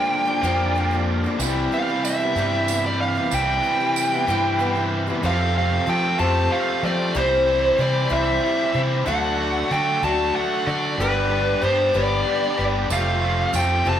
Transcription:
Already playing: overdriven electric guitar A#2 D3 A#3 D4 F4, steel-string acoustic guitar F3 A#3 D4 G4, tonewheel organ G4 A#4 D5, lead electric guitar G5
0.26 steel-string acoustic guitar F3 A#3 D4 G4
0.42 fingered electric bass F2, steel-string acoustic guitar A#2 D3 F3 A#3 D4 G4, overdriven electric guitar A#2 D3 A#3 D4 F4
0.75 steel-string acoustic guitar F3 A#3 D4 G4
0.91 steel-string acoustic guitar F3 A#3 D4 G4
1.24 steel-string acoustic guitar F3 A#3 D4 G4
1.37 fingered electric bass C2, overdriven electric guitar C3 E3 G3 C4 E4, steel-string acoustic guitar C3 G3, tonewheel organ E3 B4 C5, tambourine
1.42 steel-string acoustic guitar E4 G4
1.72 steel-string acoustic guitar G3 B3 E4 G4, lead electric guitar F5
1.88 steel-string acoustic guitar E4 G4
2.05 lead electric guitar E5, tambourine
2.20 steel-string acoustic guitar B3 E4 G4
2.34 fingered electric bass G2, steel-string acoustic guitar C3 G3, overdriven electric guitar C3 E3 G3 C4 E4, tambourine
2.38 steel-string acoustic guitar E4 G4
2.68 steel-string acoustic guitar G3 B3 E4 G4, tambourine
2.84 steel-string acoustic guitar E4 G4, lead electric guitar D5
3.01 lead electric guitar F5
3.15 steel-string acoustic guitar B3 E4 G4
3.31 fingered electric bass C2, overdriven electric guitar C3 E3 G3 C4 E4, steel-string acoustic guitar C3 G3 E4 G4, lead electric guitar G5, tambourine
3.63 steel-string acoustic guitar G3 B3 E4 G4
3.80 steel-string acoustic guitar E4 G4
3.96 tambourine
4.12 steel-string acoustic guitar B3 E4 G4, tambourine
4.26 fingered electric bass G2, steel-string acoustic guitar C3 G3 E4, overdriven electric guitar C3 E3 G3 C4 E4, tambourine
4.30 steel-string acoustic guitar G4
4.59 steel-string acoustic guitar G3 B3 E4 G4
4.75 steel-string acoustic guitar E4 G4
5.07 steel-string acoustic guitar B3 E4 G4
5.22 overdriven electric guitar F2 C3 F3 A3 C4 F4, fingered electric bass F2, steel-string acoustic guitar F3 C4 G4 A4
5.26 tonewheel organ F4 G4 A4, lead electric guitar F5
5.54 overdriven electric guitar F3 A3 C4 F4, lead electric guitar F5
5.87 overdriven electric guitar F3 A3 C4 F4, steel-string acoustic guitar F3 C4 G4 A4, fingered electric bass F3, lead electric guitar G5
6.18 fingered electric bass F2, steel-string acoustic guitar F3 C4 G4 A4, overdriven electric guitar F3 A3 C4 F4, lead electric guitar A5
6.50 overdriven electric guitar F3 A3 C4 F4, lead electric guitar F5
6.82 fingered electric bass F3, overdriven electric guitar F3 A3 C4 F4, steel-string acoustic guitar G4 A4, lead electric guitar D5
6.87 steel-string acoustic guitar C4
7.15 fingered electric bass C2, steel-string acoustic guitar C3 G3 C4 E4 C5, overdriven electric guitar C3 E3 G3 C4 E4, tonewheel organ E4 G4 C5, lead electric guitar C5
7.47 overdriven electric guitar G3 C4 E4
7.78 fingered electric bass C3, overdriven electric guitar E3 G3 C4 E4, steel-string acoustic guitar G3 C4 E4 C5, lead electric guitar D5
8.09 fingered electric bass C2, steel-string acoustic guitar C3 G3 C4 E4 C5, overdriven electric guitar G3 C4 E4, lead electric guitar E5
8.41 overdriven electric guitar E3 G3 C4 E4
8.72 fingered electric bass C3, overdriven electric guitar G3 C4 E4, steel-string acoustic guitar E4 C5
8.77 steel-string acoustic guitar C4
9.05 fingered electric bass D2, overdriven electric guitar D3 A3 D4 F#4, steel-string acoustic guitar D3 A3 D4 F#4 A4, tonewheel organ F#3 D4 A4, lead electric guitar F#5
9.37 overdriven electric guitar A3 D4 F#4
9.68 overdriven electric guitar D3 A3 D4 F#4, fingered electric bass D3, steel-string acoustic guitar A3 D4
9.72 steel-string acoustic guitar A4, lead electric guitar G5
10.01 fingered electric bass D2, steel-string acoustic guitar D3 A3 D4 F#4 A4, overdriven electric guitar A3 D4 F#4, lead electric guitar A5
10.33 overdriven electric guitar D3 A3 D4 F#4, lead electric guitar F#5
10.66 fingered electric bass D3, overdriven electric guitar A3 D4 F#4, steel-string acoustic guitar D4 F#4 A4, lead electric guitar D5
10.97 fingered electric bass G1, overdriven electric guitar G2 D3 G3 B3 D4 G4, steel-string acoustic guitar G2 D3, tonewheel organ D4 G4 D5, lead electric guitar B4
11.01 steel-string acoustic guitar G3 D4 G4 B4
11.29 overdriven electric guitar G3 B3 D4 G4
11.61 fingered electric bass G2, overdriven electric guitar G3 B3 D4 G4, steel-string acoustic guitar G3 D4 G4, lead electric guitar C5
11.93 fingered electric bass G1, steel-string acoustic guitar G2 D3 G3 D4 G4 B4, overdriven electric guitar G3 B3 D4 G4, lead electric guitar D5
12.26 overdriven electric guitar G3 B3 D4 G4
12.57 fingered electric bass G1, overdriven electric guitar G3 B3 D4 G4, steel-string acoustic guitar G3 D4 G4 B4
12.90 fingered electric bass F1, overdriven electric guitar F2 C3 F3 A3 C4 F4, steel-string acoustic guitar F3 A3 C4 F4 G4, tonewheel organ F4 G4 A4, lead electric guitar F5, tambourine
13.22 overdriven electric guitar F3 A3 C4 F4
13.53 fingered electric bass F2, overdriven electric guitar F3 A3 C4, steel-string acoustic guitar A3 C4 F4 G4, lead electric guitar G5, tambourine
13.57 overdriven electric guitar F4
13.85 fingered electric bass F1, steel-string acoustic guitar F3 A3 C4 F4 G4, overdriven electric guitar A3 C4 F4, lead electric guitar A5
13.89 overdriven electric guitar F3

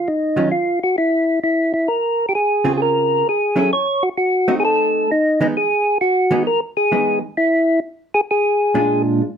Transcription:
0.08 tonewheel organ D#4
0.36 hollow-body jazz guitar D#3 F#3 C#4 F4
0.52 tonewheel organ F4
0.83 tonewheel organ F#4
0.98 tonewheel organ E4
1.44 tonewheel organ E4
1.74 tonewheel organ E4
1.88 tonewheel organ A#4
2.29 tonewheel organ G4
2.35 tonewheel organ G#4
2.64 hollow-body jazz guitar C#3 C4 F4 G#4
2.77 tonewheel organ G#4
2.82 tonewheel organ A#4
3.29 tonewheel organ G#4
3.56 hollow-body jazz guitar F#3 C#4 E4 A4, tonewheel organ G#4
3.73 tonewheel organ C#5
4.03 tonewheel organ F#4
4.17 tonewheel organ F#4
4.48 hollow-body jazz guitar A3 C4 D#4
4.60 tonewheel organ G#4
4.65 tonewheel organ A4
5.11 tonewheel organ D#4
5.41 hollow-body jazz guitar E3 G#3 B3 D#4, tonewheel organ D#4
5.57 tonewheel organ G#4
6.01 tonewheel organ F#4
6.31 hollow-body jazz guitar E3 G#3 B3 D#4
6.47 tonewheel organ A#4
6.77 tonewheel organ G#4
6.92 hollow-body jazz guitar E3 G#3 B3 D#4
7.37 tonewheel organ E4
8.14 tonewheel organ G#4
8.31 tonewheel organ G#4
8.74 hollow-body jazz guitar A#2 G#3 D4 F4

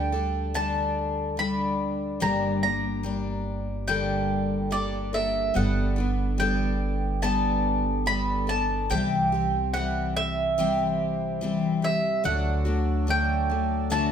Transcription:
Already playing: upright bass D2, twelve-string acoustic guitar D3 G3 D4 A4, mandolin G5
0.12 twelve-string acoustic guitar G3 D4 A4
0.54 twelve-string acoustic guitar D3 G3 D4 A4, mandolin A5
1.37 twelve-string acoustic guitar D3 G3 D4 A4, mandolin B5
2.20 upright bass G1, twelve-string acoustic guitar G2 D3 G3 A#3 D4, mandolin A#5
2.63 twelve-string acoustic guitar G3 A#3 D4, mandolin A#5
3.03 twelve-string acoustic guitar G3 A#3 D4
3.87 twelve-string acoustic guitar G2 D3 G3 A#3 D4 A4, mandolin G5
4.71 twelve-string acoustic guitar G3 A#3 D4 A4, mandolin D5
5.13 twelve-string acoustic guitar G3 A#3 D4 A4, mandolin E5
5.54 upright bass G1, twelve-string acoustic guitar G3 B3 D4 A4, mandolin F#5
5.96 twelve-string acoustic guitar B3 D4 A4
6.38 twelve-string acoustic guitar G3 B3 D4 A4, mandolin G5
7.22 twelve-string acoustic guitar G3 B3 D4 A4, mandolin A5
8.06 twelve-string acoustic guitar G3 B3 D4 A4, mandolin B5
8.47 twelve-string acoustic guitar B3 D4 A4, mandolin A5
8.90 upright bass C2, twelve-string acoustic guitar C3 E3 G3 C4 G4, mandolin G5
9.32 twelve-string acoustic guitar G3 C4 G4
9.74 twelve-string acoustic guitar E3 G3 C4 G4, mandolin F#5
10.17 mandolin E5
10.58 twelve-string acoustic guitar C3 E3 G3 C4 G4
11.41 twelve-string acoustic guitar E3 G3 C4 G4
11.82 twelve-string acoustic guitar G3 C4 G4, mandolin E5
12.24 upright bass D2, twelve-string acoustic guitar D3 A3 D4 F#4, harmonium F#3 D4 A4, mandolin F#5
12.65 twelve-string acoustic guitar A3 D4 F#4
13.07 twelve-string acoustic guitar D3 A3 D4, mandolin G5
13.50 twelve-string acoustic guitar A3 D4
13.90 twelve-string acoustic guitar D3 A3 D4 F#4, mandolin A5

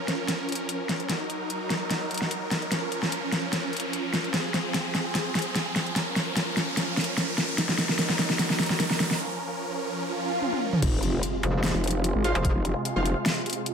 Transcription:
Already playing: supersaw synth F3 C#4 A#4, riser
0.08 snare, closed hi-hat
0.28 snare, closed hi-hat
0.49 closed hi-hat
0.52 closed hi-hat
0.55 closed hi-hat
0.69 closed hi-hat
0.89 snare, closed hi-hat
1.00 closed hi-hat
1.09 supersaw synth F#3 D#4 A#4, snare, closed hi-hat
1.30 closed hi-hat
1.50 closed hi-hat
1.70 snare, closed hi-hat
1.91 snare, closed hi-hat
2.11 closed hi-hat
2.14 closed hi-hat
2.18 closed hi-hat
2.22 snare
2.31 closed hi-hat
2.51 snare, closed hi-hat
2.62 closed hi-hat
2.72 supersaw synth F3 C#4, snare, closed hi-hat
2.92 closed hi-hat
3.03 snare
3.12 closed hi-hat
3.32 snare, closed hi-hat
3.53 snare, closed hi-hat
3.73 closed hi-hat
3.77 closed hi-hat
3.80 closed hi-hat
3.93 closed hi-hat
4.14 snare, closed hi-hat
4.24 closed hi-hat
4.34 supersaw synth C4 G#4, snare, closed hi-hat
4.54 snare, closed hi-hat
4.74 snare, closed hi-hat
4.95 snare, closed hi-hat
5.15 snare, closed hi-hat
5.35 snare, closed hi-hat
5.39 closed hi-hat
5.42 closed hi-hat
5.55 snare, closed hi-hat
5.76 snare, closed hi-hat
5.87 closed hi-hat
5.96 supersaw synth F3 C#4 A#4, snare, closed hi-hat
6.16 snare, closed hi-hat
6.37 snare, closed hi-hat
6.57 snare, closed hi-hat
6.77 snare, closed hi-hat
6.97 snare, closed hi-hat
7.01 closed hi-hat
7.04 closed hi-hat
7.18 snare, closed hi-hat
7.38 snare, closed hi-hat
7.49 closed hi-hat
7.58 supersaw synth F#3 D#4, snare, closed hi-hat
7.69 snare
7.78 snare, closed hi-hat
7.89 snare
7.99 snare, closed hi-hat
8.09 snare
8.19 snare, closed hi-hat
8.30 snare
8.39 snare, closed hi-hat
8.50 snare
8.60 snare, closed hi-hat
8.63 closed hi-hat
8.66 snare, closed hi-hat
8.80 snare, closed hi-hat
8.91 snare
9.00 snare, closed hi-hat
9.11 snare, closed hi-hat
9.20 supersaw synth F3 C#4
10.01 swell
10.42 high tom
10.53 high tom
10.73 mid tom
10.82 wobble bass F1, supersaw synth C3 G#3 F4, kick, closed hi-hat, crash, impact
11.03 closed hi-hat
11.23 closed hi-hat
11.43 wobble bass F1, closed hi-hat
11.64 snare, closed hi-hat
11.74 wobble bass F1
11.84 closed hi-hat
11.87 closed hi-hat
11.91 closed hi-hat
12.04 closed hi-hat
12.15 wobble bass G#1
12.24 synth stab F4 C5 F5, closed hi-hat
12.35 wobble bass F1, closed hi-hat
12.45 kick, closed hi-hat
12.55 wobble bass F1
12.65 closed hi-hat
12.85 closed hi-hat
12.96 wobble bass F1, synth stab F4 C5 F5
13.06 closed hi-hat
13.26 snare, closed hi-hat
13.46 closed hi-hat
13.50 closed hi-hat
13.53 closed hi-hat
13.66 closed hi-hat

